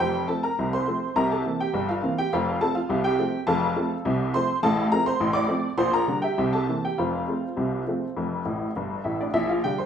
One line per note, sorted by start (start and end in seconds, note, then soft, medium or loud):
0.00 0.24 F1 medium
0.00 0.24 F2 medium
0.00 0.27 G4 medium
0.00 0.27 C5 medium
0.00 0.27 G5 medium
0.28 0.45 F3 soft
0.28 0.45 A3 soft
0.28 0.45 C4 soft
0.28 0.43 A4 soft
0.28 0.43 A5 medium
0.43 0.70 A#4 medium
0.43 0.66 A#5 medium
0.59 0.83 C2 medium
0.59 0.83 C3 medium
0.73 1.14 C5 medium
0.73 1.14 C6 medium
0.88 1.03 F3 soft
0.88 1.04 A3 soft
0.88 1.04 C4 medium
1.16 1.40 C2 medium
1.16 1.40 C3 medium
1.16 1.30 A#4 medium
1.16 1.30 A#5 medium
1.32 1.58 A4 medium
1.32 1.58 A5 medium
1.46 1.61 E3 soft
1.46 1.62 A#3 soft
1.46 1.62 C4 soft
1.60 1.87 G4 medium
1.60 1.87 G5 medium
1.74 1.98 G1 medium
1.74 1.98 G2 medium
1.89 2.16 F4 medium
1.89 2.16 F5 medium
2.03 2.19 E3 soft
2.03 2.19 A#3 soft
2.03 2.19 C4 medium
2.18 2.32 G4 medium
2.18 2.32 G5 medium
2.33 2.57 F1 medium
2.33 2.57 F2 medium
2.33 2.60 F4 medium
2.33 2.60 C5 medium
2.33 2.56 F5 medium
2.61 2.77 F3 soft
2.61 2.77 A3 soft
2.61 2.78 C4 medium
2.61 2.75 A4 medium
2.61 2.75 A5 medium
2.75 3.03 F4 medium
2.75 2.98 F5 medium
2.89 3.14 C2 medium
2.89 3.14 C3 medium
3.04 3.46 G4 medium
3.04 3.39 G5 medium
3.19 3.35 F3 soft
3.19 3.35 A3 soft
3.19 3.35 C4 medium
3.47 3.72 F1 medium
3.47 3.72 F2 loud
3.47 4.02 A4 medium
3.47 4.02 F5 medium
3.47 3.93 A5 loud
3.76 3.92 F3 medium
3.76 3.93 A3 soft
3.76 3.93 C4 medium
4.05 4.30 C2 medium
4.05 4.30 C3 medium
4.34 4.50 F3 medium
4.34 4.51 A3 medium
4.34 4.51 C4 medium
4.34 4.62 C5 medium
4.34 4.57 C6 loud
4.63 4.88 A1 medium
4.63 4.88 A2 loud
4.63 4.91 A4 medium
4.63 4.91 F5 medium
4.63 4.86 A5 loud
4.92 5.08 F3 medium
4.92 5.08 A3 medium
4.92 5.09 C4 medium
4.92 5.06 A#4 medium
4.92 5.07 A#5 loud
5.06 5.34 C5 medium
5.06 5.34 C6 loud
5.20 5.46 A1 medium
5.20 5.45 A2 medium
5.33 5.76 D5 medium
5.33 5.69 D6 loud
5.48 5.65 F3 medium
5.48 5.65 A3 medium
5.48 5.65 C4 medium
5.78 6.03 A#1 medium
5.78 6.03 A#2 medium
5.78 5.92 C5 medium
5.78 5.93 C6 loud
5.93 6.21 A#4 medium
5.93 6.17 A#5 medium
6.08 6.24 D3 soft
6.08 6.24 G3 soft
6.08 6.25 D4 soft
6.22 6.50 G4 medium
6.22 6.51 E5 medium
6.22 6.50 G5 medium
6.38 6.63 C2 medium
6.38 6.63 C3 medium
6.53 6.81 A4 medium
6.53 6.81 A5 medium
6.69 6.85 E3 soft
6.69 6.85 A#3 soft
6.69 6.85 C4 soft
6.85 6.98 G4 medium
6.85 6.98 G5 medium
6.98 7.23 F1 medium
6.98 7.23 F2 medium
6.98 8.71 F4 medium
6.98 8.71 C5 medium
6.98 8.39 F5 medium
7.28 7.44 F3 soft
7.28 7.44 A3 soft
7.28 7.44 C4 soft
7.57 7.81 C2 medium
7.57 7.81 C3 medium
7.87 8.03 F3 soft
7.87 8.04 A3 soft
7.87 8.03 C4 soft
8.16 8.41 F1 medium
8.16 8.41 F2 medium
8.45 8.67 A1 medium
8.45 8.67 A2 medium
8.76 8.97 G1 medium
8.76 8.97 G2 medium
9.04 9.26 A1 medium
9.04 9.26 A2 medium
9.04 9.18 E4 medium
9.04 9.18 E5 medium
9.21 9.33 D4 soft
9.21 9.34 D5 medium
9.34 9.58 A#1 medium
9.34 9.58 A#2 medium
9.34 9.47 E4 medium
9.34 9.48 E5 medium
9.49 9.63 F4 medium
9.49 9.63 F5 medium
9.64 9.79 D3 soft
9.64 9.80 G3 soft
9.64 9.80 D4 soft
9.64 9.77 G4 medium
9.64 9.77 G5 medium
9.78 9.86 C5 medium
9.78 9.86 C6 medium